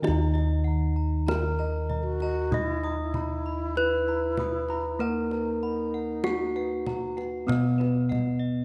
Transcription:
0.00 1.24 D#3 medium
0.00 2.51 D#3 medium
0.00 3.72 D#4 medium
0.00 0.32 D#5 medium
0.04 7.46 D#2 loud
0.04 1.28 D#4 medium
0.04 0.39 A#5 medium
0.04 kendang high medium
0.34 0.63 D#5 medium
0.34 0.70 D#5 medium
0.34 kendang slap soft
0.64 0.94 F#5 medium
0.64 1.01 A#5 soft
0.96 1.25 A#5 medium
1.27 1.35 E4 soft
1.27 2.52 A#4 medium
1.27 1.56 A#5 medium
1.27 1.63 A#5 medium
1.27 kendang slap soft
1.27 kendang high medium
1.59 1.94 D#5 medium
1.59 1.88 A#5 medium
1.89 2.18 D#5 medium
1.89 2.25 A#5 medium
1.89 kendang low soft
2.00 2.63 F#4 loud
2.00 2.04 A#4 loud
2.20 2.56 D#5 medium
2.20 2.50 A#5 medium
2.20 kendang slap soft
2.51 5.00 D#4 medium
2.51 3.77 D#5 medium
2.51 2.87 B5 medium
2.51 2.81 D#6 medium
2.51 kendang low medium
2.62 3.00 E4 loud
2.83 3.18 A#5 medium
2.83 3.12 D#6 medium
2.83 kendang slap soft
3.01 5.10 E4 loud
3.14 3.43 A#5 medium
3.14 3.49 B5 medium
3.14 kendang slap soft
3.14 kendang low medium
3.46 3.74 B5 medium
3.75 3.85 E4 soft
3.75 5.01 B4 medium
3.75 4.11 B5 medium
3.75 4.06 B5 medium
3.75 kendang slap soft
4.08 4.42 A#5 medium
4.08 4.36 B5 medium
4.37 4.73 B5 medium
4.37 4.67 D#6 soft
4.37 kendang slap soft
4.37 kendang high soft
4.37 kendang low medium
4.69 5.04 A#5 medium
4.69 4.98 B5 medium
4.69 kendang slap soft
4.99 7.48 A#3 medium
4.99 6.24 A#4 medium
4.99 8.65 A#4 medium
4.99 5.35 F#5 medium
4.99 5.30 A#5 medium
5.08 7.52 D#4 medium
5.31 5.66 B4 medium
5.31 5.61 A#5 medium
5.31 kendang slap soft
5.63 5.97 F#5 medium
5.63 5.91 B5 medium
5.94 6.22 F#5 medium
6.24 6.33 E4 soft
6.24 7.48 F#4 medium
6.24 6.53 F#5 medium
6.24 6.59 F#5 medium
6.24 kendang slap soft
6.24 kendang high medium
6.56 6.90 B4 medium
6.56 6.84 F#5 medium
6.86 7.21 F#5 medium
6.86 7.15 A#5 medium
6.86 kendang high soft
6.86 kendang low soft
7.17 7.52 B4 medium
7.17 7.46 F#5 medium
7.17 kendang slap soft
7.47 8.65 B2 medium
7.47 8.65 B3 medium
7.47 7.76 B4 soft
7.47 7.83 D#5 medium
7.47 kendang high medium
7.47 kendang low medium
7.78 8.07 B4 medium
7.78 8.14 B4 medium
7.78 kendang slap soft
8.09 8.45 D#5 medium
8.09 8.38 F#5 medium
8.09 kendang slap soft
8.09 kendang low medium
8.39 8.65 D#5 medium

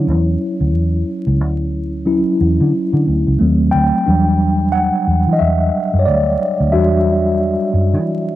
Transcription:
0.00 2.02 F#3 medium
0.00 2.02 C#4 soft
0.00 2.02 E4 medium
0.07 0.35 E2 medium
0.60 0.74 D2 medium
0.74 1.02 E2 medium
1.27 1.41 C#2 medium
1.41 2.22 D2 medium
2.06 2.52 F#3 medium
2.06 2.53 C#4 medium
2.06 2.53 E4 medium
2.41 2.57 E2 medium
2.60 2.71 D3 medium
2.93 3.05 D3 medium
3.07 3.24 D2 medium
3.27 3.38 C#2 medium
3.39 3.69 D#2 medium
3.39 4.03 F#3 medium
3.39 4.02 A3 medium
3.39 4.03 C4 soft
3.71 3.90 D2 medium
3.71 4.75 G5 medium
4.06 4.89 E2 loud
4.06 6.69 F#3 medium
4.06 6.68 G3 soft
4.06 6.69 D4 soft
4.72 5.35 F#5 loud
5.07 5.23 E2 medium
5.27 5.38 E3 medium
5.33 5.39 D#5 medium
5.39 5.69 E2 medium
5.39 6.02 E5 medium
5.93 6.05 F#2 medium
5.99 6.05 C#5 medium
6.05 6.35 D2 medium
6.05 6.74 D5 medium
6.60 6.71 D2 medium
6.72 7.55 E2 loud
6.72 7.68 G3 soft
6.72 7.68 D4 soft
6.72 7.69 F#4 medium
6.72 8.36 E5 medium
7.74 7.95 F#2 medium
7.93 8.36 E3 medium

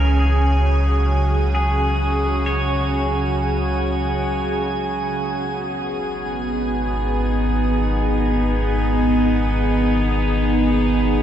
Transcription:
0.00 5.14 C#2 medium
0.00 5.18 C#3 medium
0.00 6.30 C#4 medium
0.00 7.91 F#4 medium
0.00 11.23 G#4 medium
0.00 0.19 A#4 medium
0.00 6.64 G#5 medium
0.00 11.23 G#5 medium
0.19 1.53 G#4 medium
1.55 2.49 G#4 medium
2.46 4.69 C#5 medium
5.17 11.23 G#1 medium
5.17 11.23 B3 medium
5.69 11.23 D#4 medium

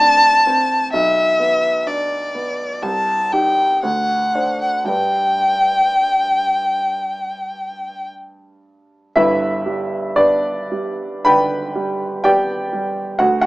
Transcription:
0.00 0.95 A2 soft
0.00 0.47 C4 soft
0.00 0.95 D4 soft
0.00 0.92 A5 loud
0.47 0.94 C4 soft
0.93 2.79 B1 medium
0.93 1.88 E5 medium
1.40 2.15 B3 soft
1.86 2.63 D4 soft
1.86 2.84 D5 medium
2.35 2.83 B3 soft
2.82 3.81 C2 medium
2.82 3.34 A5 medium
3.32 3.80 D#4 soft
3.32 3.80 G4 soft
3.32 3.83 G5 medium
3.83 4.86 D2 soft
3.83 4.61 F#5 medium
4.35 4.85 D4 soft
4.35 4.86 C5 soft
4.62 4.88 F#5 medium
4.85 9.10 G2 soft
4.85 9.10 G3 soft
4.85 9.11 D4 soft
4.85 9.11 B4 soft
4.85 8.07 G5 medium
9.16 11.22 G1 medium
9.16 11.22 G2 medium
9.16 10.13 E4 medium
9.16 10.13 B4 medium
9.16 10.16 E5 medium
9.66 10.49 G3 soft
10.16 11.04 B3 soft
10.16 11.22 D4 medium
10.16 11.22 B4 medium
10.16 11.25 D5 medium
10.72 11.57 G3 soft
11.25 12.05 D3 medium
11.25 12.21 B4 medium
11.25 12.21 G5 medium
11.25 12.24 B5 loud
11.75 12.53 G3 soft
12.24 13.01 B3 soft
12.24 13.16 G4 medium
12.24 13.16 D5 medium
12.24 13.19 G5 medium
12.73 13.20 G3 soft
13.19 13.46 D2 medium
13.19 13.41 F#4 medium
13.19 13.40 F#5 medium
13.41 13.46 F#4 medium
13.41 13.46 F#5 medium

